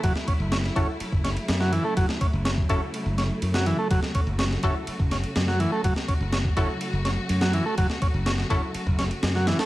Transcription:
<<
  \new Staff \with { instrumentName = "Synth stab" } { \time 4/4 \key fis \minor \tempo 4 = 124 r4. <e' fis' a'>8 r2 | r4. <e' fis' a'>8 r2 | r4. <e' fis' a'>8 r2 | r4. <e' fis' a'>8 r2 |
r4. <e' fis' a'>8 r2 | }
  \new Staff \with { instrumentName = "Transistor combo organ" } { \time 4/4 \key fis \minor fis16 r16 cis'16 r16 cis'16 r16 cis'16 r8. cis'16 r8 fis16 e16 a16 | fis16 r16 cis'16 r16 cis'16 r16 cis'16 r8. cis'16 r8 fis16 e16 a16 | fis16 r16 cis'16 r16 cis'16 r16 cis'16 r8. cis'16 r8 fis16 e16 a16 | fis16 r16 cis'16 r16 cis'16 r16 cis'16 r8. cis'16 r8 fis16 e16 a16 |
fis16 r16 cis'16 r16 cis'16 r16 cis'16 r8. cis'16 r8 fis16 e16 a16 | }
  \new Staff \with { instrumentName = "String section" } { \time 4/4 \key fis \minor << { e'1~ | e'1 | fis'1~ | fis'1~ |
fis'1 | } \\ { <cis fis a>1~ | <cis fis a>1~ | <cis fis a>1~ | <cis fis a>1~ |
<cis fis a>1 | } >> }
  \new Staff \with { instrumentName = "Fingered electric bass" } { \clef bass \time 4/4 \key fis \minor fis,,16 r8 fis,,8 r16 fis,,16 r8 fis,,8 r16 fis,8 r8 | fis,,16 r8 fis,,8 r16 fis,,16 r8 fis,,8 r16 fis,8 r8 | fis,,16 r8 fis,,8 r16 fis,,16 r8 fis,,8 r16 fis,8 r8 | fis,,16 r8 fis,,8 r16 fis,,16 r8 fis,,8 r16 fis,8 r8 |
fis,,16 r8 fis,,8 r16 fis,,16 r8 fis,,8 r16 fis,8 r8 | }
  \new DrumStaff \with { instrumentName = "Drums" } \drummode { \time 4/4 <bd cymr>16 sn16 <bd cymr>8 <cymr sn>16 sn16 <bd cymr>8 cymr16 bd16 <cymr sn>16 cymr16 <cymr sn>16 sn16 cymr8 | <bd cymr>16 sn16 <bd cymr>8 <cymr sn>16 bd16 <bd cymr>8 cymr8 <cymr sn>8 cymr16 sn16 cymr8 | <bd cymr>16 sn16 <bd cymr>8 <cymr sn>16 sn16 <bd cymr>8 cymr16 bd16 <cymr sn>16 cymr16 <cymr sn>16 sn16 cymr8 | <bd cymr>16 sn16 <bd cymr>8 <cymr sn>16 bd16 <bd cymr>8 cymr8 <cymr sn>8 cymr16 sn16 cymr8 |
<bd cymr>16 sn16 <bd cymr>8 <cymr sn>16 sn16 <bd cymr>8 cymr16 bd16 <cymr sn>16 cymr16 <cymr sn>16 sn16 <cymr sn>16 <cymr sn>16 | }
>>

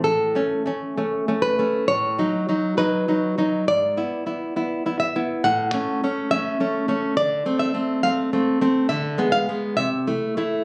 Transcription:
\new Staff \with { instrumentName = "Nylon-string guitar" } { \time 2/4 \key a \major \tempo 4 = 68 << { a'4. b'8 | cis''4 b'4 | d''4. e''8 | fis''4 e''4 |
\key d \dorian d''8 e''8 f''4 | e''8 f''8 e''4 | } \\ { \tuplet 3/2 { a,8 <a cis'>8 <a cis'>8 <a cis'>8 <a cis'>8 <a cis'>8 } | \tuplet 3/2 { a,8 <fis dis'>8 <fis dis'>8 <fis dis'>8 <fis dis'>8 <fis dis'>8 } | \tuplet 3/2 { gis,8 <b e'>8 <b e'>8 <b e'>8 <b e'>8 <b e'>8 } | \tuplet 3/2 { a,8 <a cis'>8 <a cis'>8 <a cis'>8 <a cis'>8 <a cis'>8 } |
\tuplet 3/2 { d8 <a c'>8 <a c'>8 <a c'>8 <a c'>8 <a c'>8 } | \tuplet 3/2 { d8 <gis b>8 <gis b>8 c8 <a e'>8 <a e'>8 } | } >> }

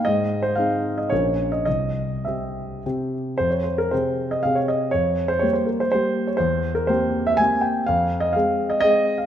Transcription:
\new Staff \with { instrumentName = "Grand piano" } { \time 3/4 \key f \minor \tempo 4 = 119 << { ees''8. c''16 f''8. ees''16 des''8. ees''16 | ees''4 e''4. r8 | c''16 des''16 c''16 bes'16 c''8. ees''16 f''16 des''16 ees''8 | des''8. c''16 des''16 c''16 bes'16 c''16 c''8. des''16 |
c''8. bes'16 c''8. e''16 aes''8 g''8 | f''8. ees''16 f''8. ees''16 ees''8. f''16 | } \\ { aes,4 <aes c' ees'>4 <bes,, f des' bes'>4 | c,4 <c c' g'>4 <c c' g'>4 | f,4 <c c' aes'>4 <c c' aes'>4 | f,4 <g bes g'>4 <g bes g'>4 |
e,4 <bes c' g'>4 <bes c' g'>4 | f,4 <aes c' aes'>4 <aes c' aes'>4 | } >> }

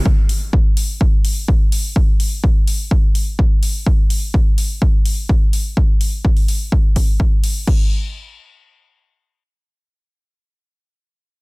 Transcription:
\new DrumStaff \with { instrumentName = "Drums" } \drummode { \time 4/4 \tempo 4 = 126 bd8 hho8 bd8 hho8 bd8 hho8 bd8 hho8 | bd8 hho8 bd8 hho8 bd8 hho8 bd8 hho8 | bd8 hho8 bd8 hho8 bd8 hho8 bd8 hho8 | bd8 hho8 bd16 hho16 hho8 bd8 <hho bd>8 bd8 hho8 |
<cymc bd>4 r4 r4 r4 | r4 r4 r4 r4 | }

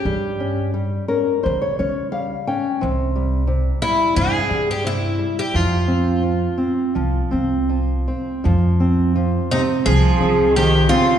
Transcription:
<<
  \new Staff \with { instrumentName = "Twelve-string acoustic guitar" } { \time 4/4 \key f \minor \tempo 4 = 86 g'4 r2. | r4. e'8 aes'8. g'16 e'8. g'16 | f'2.~ f'8 r8 | r4. ees'8 aes'4 g'8 f'8 | }
  \new Staff \with { instrumentName = "Nylon-string guitar" } { \clef bass \time 4/4 \key f \minor << { r4. bes'8 c''16 des''16 des''8 f''8 g''8 | r1 | r1 | r1 | } \\ { g8 des'8 g8 des'8 g8 des'8 g8 des'8 | c8 g8 c8 g8 c8 g8 c8 g8 | f8 c'8 f8 c'8 f8 c'8 f8 c'8 | f8 c'8 f8 c'8 f8 c'8 f8 c'8 | } >> }
  \new Staff \with { instrumentName = "Cello" } { \clef bass \time 4/4 \key f \minor r1 | r1 | r1 | r4. c8 f4 ees8 des8 | }
  \new Staff \with { instrumentName = "Upright bass" } { \clef bass \time 4/4 \key f \minor g,2 des8 des4. | c,2 g,8 g,4. | f,2 c,8 c,4. | f,2 c,8 c,4. | }
>>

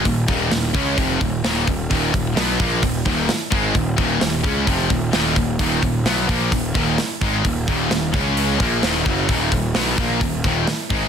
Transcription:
<<
  \new Staff \with { instrumentName = "Distorted electric guitar" } { \clef bass \time 4/4 \key ees \minor \tempo 4 = 130 <ees, bes,>8 <ees, bes, ees>8 <ees, bes,>8 <des aes des'>8 <f, c f>8 <ees, bes,>8 <ees, bes, ees>8 <ees, bes,>8 | <ees, bes, ees>8 <ees, bes,>8 <ces ges ces'>8 <bes, f bes>8 <ees, bes,>8 <ees, bes, ees>8 r8 <aes, ees aes>8 | <ees, bes,>8 <ees, bes, ees>8 <ees, bes,>8 <des aes des'>8 <f, c f>8 <ees, bes,>8 <ees, bes, ees>8 <ees, bes,>8 | <ees, bes, ees>8 <ees, bes,>8 <ces ges ces'>8 <bes, f bes>8 <ees, bes,>8 <ees, bes, ees>8 r8 <aes, ees aes>8 |
<ees, bes,>8 <ees, bes, ees>8 <ees, bes,>8 <des aes des'>4 <bes, f bes>8 <ees, bes, ees>8 <ges, des ges>8 | <ees, bes, ees>8 <ees, bes,>8 <ces ges ces'>8 <bes, f bes>8 <ees, bes,>8 <ees, bes, ees>8 r8 <aes, ees aes>8 | }
  \new Staff \with { instrumentName = "Distorted electric guitar" } { \clef bass \time 4/4 \key ees \minor <ees, bes,>8 <ees, bes, ees>8 <ees, bes,>8 <des aes des'>8 <f, c f>8 <ees, bes,>8 <ees, bes, ees>8 <ees, bes,>8 | <ees, bes, ees>8 <ees, bes,>8 <ces ges ces'>8 <bes, f bes>8 <ees, bes,>8 <ees, bes, ees>8 r8 <aes, ees aes>8 | <ees, bes,>8 <ees, bes, ees>8 <ees, bes,>8 <des aes des'>8 <f, c f>8 <ees, bes,>8 <ees, bes, ees>8 <ees, bes,>8 | <ees, bes, ees>8 <ees, bes,>8 <ces ges ces'>8 <bes, f bes>8 <ees, bes,>8 <ees, bes, ees>8 r8 <aes, ees aes>8 |
<ees, bes,>8 <ees, bes, ees>8 <ees, bes,>8 <des aes des'>4 <bes, f bes>8 <ees, bes, ees>8 <ges, des ges>8 | <ees, bes, ees>8 <ees, bes,>8 <ces ges ces'>8 <bes, f bes>8 <ees, bes,>8 <ees, bes, ees>8 r8 <aes, ees aes>8 | }
  \new Staff \with { instrumentName = "Distorted electric guitar" } { \clef bass \time 4/4 \key ees \minor <ees, bes,>8 <ees, bes, ees>8 <ees, bes,>8 <des aes des'>8 <f, c f>8 <ees, bes,>8 <ees, bes, ees>8 <ees, bes,>8 | <ees, bes, ees>8 <ees, bes,>8 <ces ges ces'>8 <bes, f bes>8 <ees, bes,>8 <ees, bes, ees>8 r8 <aes, ees aes>8 | <ees, bes,>8 <ees, bes, ees>8 <ees, bes,>8 <des aes des'>8 <f, c f>8 <ees, bes,>8 <ees, bes, ees>8 <ees, bes,>8 | <ees, bes, ees>8 <ees, bes,>8 <ces ges ces'>8 <bes, f bes>8 <ees, bes,>8 <ees, bes, ees>8 r8 <aes, ees aes>8 |
<ees, bes,>8 <ees, bes, ees>8 <ees, bes,>8 <des aes des'>4 <bes, f bes>8 <ees, bes, ees>8 <ges, des ges>8 | <ees, bes, ees>8 <ees, bes,>8 <ces ges ces'>8 <bes, f bes>8 <ees, bes,>8 <ees, bes, ees>8 r8 <aes, ees aes>8 | }
  \new Staff \with { instrumentName = "Picked electric bass" } { \clef bass \time 4/4 \key ees \minor ees,,8 ees,,8 ees,,8 des,8 f,,8 ees,,8 ees,,8 ees,,8 | ees,,8 ees,,8 ces,8 bes,,8 ees,,8 ees,,8 r8 aes,,8 | ees,,8 ees,,8 ees,,8 des,8 f,,8 ees,,8 ees,,8 ees,,8 | ees,,8 ees,,8 ces,8 bes,,8 ees,,8 ees,,8 r8 aes,,8 |
ees,,8 ees,,8 ees,,8 des,4 bes,,8 ees,,8 ges,,8 | ees,,8 ees,,8 ces,8 bes,,8 ees,,8 ees,,8 r8 aes,,8 | }
  \new DrumStaff \with { instrumentName = "Drums" } \drummode { \time 4/4 <hho bd>8 <hho bd>8 <hho sn>8 <hho bd>8 <hho bd>8 <hho bd>8 <hho sn>8 <hho bd>8 | <hho bd>8 <hho bd>8 <hho sn>8 <hho bd>8 <hho bd>8 <hho bd>8 <hho sn>8 <hho bd>8 | <hho bd>8 <hho bd>8 <hho sn>8 <hho bd>8 <hho bd>8 <hho bd>8 <hho sn>8 <hho bd>8 | <hho bd>8 <hho bd>8 <hho sn>8 <hho bd>8 <hho bd>8 <hho bd>8 <hho sn>8 <hho bd>8 |
<hho bd>8 <hho bd>8 <hho sn>8 <hho bd>8 hho8 <hho bd>8 <hho sn>8 <hho bd>8 | <hho bd>8 <hho bd>8 <hho sn>8 bd8 <hho bd>8 <hho bd>8 <hho sn>8 <hho bd>8 | }
>>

